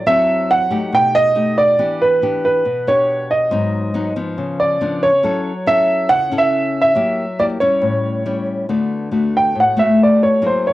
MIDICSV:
0, 0, Header, 1, 3, 480
1, 0, Start_track
1, 0, Tempo, 431655
1, 68, Time_signature, 4, 2, 24, 8
1, 11932, End_track
2, 0, Start_track
2, 0, Title_t, "Grand piano"
2, 0, Program_c, 0, 0
2, 76, Note_on_c, 0, 76, 98
2, 565, Note_on_c, 0, 78, 100
2, 566, Note_off_c, 0, 76, 0
2, 1050, Note_off_c, 0, 78, 0
2, 1052, Note_on_c, 0, 79, 99
2, 1278, Note_on_c, 0, 75, 106
2, 1286, Note_off_c, 0, 79, 0
2, 1754, Note_on_c, 0, 74, 89
2, 1766, Note_off_c, 0, 75, 0
2, 2242, Note_on_c, 0, 71, 84
2, 2244, Note_off_c, 0, 74, 0
2, 2707, Note_off_c, 0, 71, 0
2, 2724, Note_on_c, 0, 71, 80
2, 3204, Note_on_c, 0, 73, 85
2, 3209, Note_off_c, 0, 71, 0
2, 3677, Note_on_c, 0, 75, 76
2, 3689, Note_off_c, 0, 73, 0
2, 4586, Note_off_c, 0, 75, 0
2, 5113, Note_on_c, 0, 74, 86
2, 5591, Note_on_c, 0, 73, 91
2, 5603, Note_off_c, 0, 74, 0
2, 6309, Note_on_c, 0, 76, 96
2, 6329, Note_off_c, 0, 73, 0
2, 6774, Note_on_c, 0, 78, 107
2, 6801, Note_off_c, 0, 76, 0
2, 7096, Note_on_c, 0, 76, 92
2, 7109, Note_off_c, 0, 78, 0
2, 7562, Note_off_c, 0, 76, 0
2, 7578, Note_on_c, 0, 76, 89
2, 8225, Note_on_c, 0, 74, 86
2, 8241, Note_off_c, 0, 76, 0
2, 8280, Note_off_c, 0, 74, 0
2, 8455, Note_on_c, 0, 73, 84
2, 9376, Note_off_c, 0, 73, 0
2, 10418, Note_on_c, 0, 79, 80
2, 10635, Note_off_c, 0, 79, 0
2, 10677, Note_on_c, 0, 78, 78
2, 10885, Note_off_c, 0, 78, 0
2, 10888, Note_on_c, 0, 76, 78
2, 11111, Note_off_c, 0, 76, 0
2, 11156, Note_on_c, 0, 74, 71
2, 11365, Note_off_c, 0, 74, 0
2, 11376, Note_on_c, 0, 73, 77
2, 11595, Note_off_c, 0, 73, 0
2, 11637, Note_on_c, 0, 72, 69
2, 11846, Note_off_c, 0, 72, 0
2, 11865, Note_on_c, 0, 73, 80
2, 11932, Note_off_c, 0, 73, 0
2, 11932, End_track
3, 0, Start_track
3, 0, Title_t, "Nylon-string guitar"
3, 0, Program_c, 1, 24
3, 69, Note_on_c, 1, 54, 73
3, 70, Note_on_c, 1, 60, 61
3, 76, Note_on_c, 1, 64, 57
3, 80, Note_on_c, 1, 69, 61
3, 750, Note_off_c, 1, 60, 0
3, 752, Note_off_c, 1, 64, 0
3, 755, Note_off_c, 1, 69, 0
3, 782, Note_on_c, 1, 57, 64
3, 787, Note_on_c, 1, 63, 57
3, 793, Note_on_c, 1, 67, 61
3, 1004, Note_off_c, 1, 54, 0
3, 1028, Note_on_c, 1, 47, 65
3, 1466, Note_off_c, 1, 57, 0
3, 1467, Note_off_c, 1, 63, 0
3, 1471, Note_off_c, 1, 67, 0
3, 1504, Note_on_c, 1, 57, 55
3, 1508, Note_on_c, 1, 63, 51
3, 1512, Note_on_c, 1, 67, 57
3, 1963, Note_off_c, 1, 47, 0
3, 1966, Note_off_c, 1, 57, 0
3, 1967, Note_off_c, 1, 63, 0
3, 1970, Note_off_c, 1, 67, 0
3, 1988, Note_on_c, 1, 52, 75
3, 1990, Note_on_c, 1, 59, 61
3, 1995, Note_on_c, 1, 67, 62
3, 1996, Note_on_c, 1, 62, 53
3, 2429, Note_off_c, 1, 59, 0
3, 2431, Note_off_c, 1, 62, 0
3, 2432, Note_off_c, 1, 67, 0
3, 2471, Note_on_c, 1, 59, 54
3, 2479, Note_on_c, 1, 62, 58
3, 2480, Note_on_c, 1, 67, 60
3, 2924, Note_off_c, 1, 52, 0
3, 2946, Note_off_c, 1, 59, 0
3, 2948, Note_off_c, 1, 62, 0
3, 2949, Note_on_c, 1, 47, 65
3, 2950, Note_off_c, 1, 67, 0
3, 3195, Note_on_c, 1, 59, 63
3, 3197, Note_on_c, 1, 62, 58
3, 3207, Note_on_c, 1, 67, 67
3, 3871, Note_off_c, 1, 59, 0
3, 3874, Note_off_c, 1, 62, 0
3, 3875, Note_off_c, 1, 67, 0
3, 3883, Note_off_c, 1, 47, 0
3, 3904, Note_on_c, 1, 44, 72
3, 3904, Note_on_c, 1, 54, 57
3, 3914, Note_on_c, 1, 59, 59
3, 3920, Note_on_c, 1, 63, 64
3, 4345, Note_off_c, 1, 54, 0
3, 4351, Note_off_c, 1, 59, 0
3, 4353, Note_off_c, 1, 63, 0
3, 4383, Note_on_c, 1, 54, 61
3, 4389, Note_on_c, 1, 59, 56
3, 4394, Note_on_c, 1, 63, 71
3, 4585, Note_off_c, 1, 54, 0
3, 4589, Note_off_c, 1, 59, 0
3, 4590, Note_off_c, 1, 63, 0
3, 4628, Note_on_c, 1, 53, 67
3, 4634, Note_on_c, 1, 59, 62
3, 4840, Note_off_c, 1, 44, 0
3, 4869, Note_on_c, 1, 49, 66
3, 5308, Note_off_c, 1, 53, 0
3, 5311, Note_off_c, 1, 59, 0
3, 5348, Note_on_c, 1, 53, 59
3, 5356, Note_on_c, 1, 59, 62
3, 5361, Note_on_c, 1, 62, 59
3, 5669, Note_off_c, 1, 53, 0
3, 5673, Note_off_c, 1, 59, 0
3, 5675, Note_off_c, 1, 62, 0
3, 5803, Note_off_c, 1, 49, 0
3, 5819, Note_on_c, 1, 54, 78
3, 5823, Note_on_c, 1, 61, 55
3, 5824, Note_on_c, 1, 64, 56
3, 5833, Note_on_c, 1, 69, 62
3, 6132, Note_off_c, 1, 61, 0
3, 6134, Note_off_c, 1, 64, 0
3, 6136, Note_off_c, 1, 69, 0
3, 6300, Note_on_c, 1, 61, 63
3, 6309, Note_on_c, 1, 64, 60
3, 6309, Note_on_c, 1, 69, 64
3, 6758, Note_off_c, 1, 54, 0
3, 6789, Note_on_c, 1, 49, 68
3, 6985, Note_off_c, 1, 61, 0
3, 6987, Note_off_c, 1, 64, 0
3, 6988, Note_off_c, 1, 69, 0
3, 7022, Note_on_c, 1, 61, 62
3, 7030, Note_on_c, 1, 64, 68
3, 7034, Note_on_c, 1, 69, 66
3, 7705, Note_off_c, 1, 61, 0
3, 7710, Note_off_c, 1, 64, 0
3, 7710, Note_off_c, 1, 69, 0
3, 7723, Note_off_c, 1, 49, 0
3, 7728, Note_on_c, 1, 54, 69
3, 7733, Note_on_c, 1, 58, 60
3, 7735, Note_on_c, 1, 64, 57
3, 7743, Note_on_c, 1, 67, 69
3, 8048, Note_off_c, 1, 58, 0
3, 8048, Note_off_c, 1, 64, 0
3, 8053, Note_off_c, 1, 67, 0
3, 8218, Note_on_c, 1, 58, 58
3, 8224, Note_on_c, 1, 67, 66
3, 8226, Note_on_c, 1, 64, 57
3, 8424, Note_off_c, 1, 58, 0
3, 8425, Note_off_c, 1, 64, 0
3, 8426, Note_off_c, 1, 67, 0
3, 8455, Note_off_c, 1, 54, 0
3, 8459, Note_on_c, 1, 55, 57
3, 8463, Note_on_c, 1, 61, 60
3, 8469, Note_on_c, 1, 64, 63
3, 8690, Note_on_c, 1, 45, 67
3, 9144, Note_off_c, 1, 55, 0
3, 9146, Note_off_c, 1, 61, 0
3, 9148, Note_off_c, 1, 64, 0
3, 9181, Note_on_c, 1, 55, 52
3, 9186, Note_on_c, 1, 64, 61
3, 9187, Note_on_c, 1, 61, 56
3, 9634, Note_off_c, 1, 45, 0
3, 9644, Note_off_c, 1, 55, 0
3, 9646, Note_off_c, 1, 61, 0
3, 9647, Note_off_c, 1, 64, 0
3, 9662, Note_on_c, 1, 50, 74
3, 9665, Note_on_c, 1, 57, 62
3, 9665, Note_on_c, 1, 59, 55
3, 9670, Note_on_c, 1, 66, 63
3, 10106, Note_off_c, 1, 57, 0
3, 10108, Note_off_c, 1, 59, 0
3, 10108, Note_off_c, 1, 66, 0
3, 10135, Note_on_c, 1, 57, 54
3, 10141, Note_on_c, 1, 59, 57
3, 10145, Note_on_c, 1, 66, 57
3, 10601, Note_off_c, 1, 50, 0
3, 10624, Note_on_c, 1, 45, 66
3, 10823, Note_off_c, 1, 57, 0
3, 10824, Note_off_c, 1, 59, 0
3, 10828, Note_off_c, 1, 66, 0
3, 10861, Note_on_c, 1, 57, 62
3, 10867, Note_on_c, 1, 59, 65
3, 10873, Note_on_c, 1, 66, 72
3, 11546, Note_off_c, 1, 57, 0
3, 11548, Note_off_c, 1, 59, 0
3, 11552, Note_off_c, 1, 66, 0
3, 11562, Note_off_c, 1, 45, 0
3, 11586, Note_on_c, 1, 54, 75
3, 11591, Note_on_c, 1, 58, 61
3, 11593, Note_on_c, 1, 64, 58
3, 11598, Note_on_c, 1, 68, 65
3, 11932, Note_off_c, 1, 54, 0
3, 11932, Note_off_c, 1, 58, 0
3, 11932, Note_off_c, 1, 64, 0
3, 11932, Note_off_c, 1, 68, 0
3, 11932, End_track
0, 0, End_of_file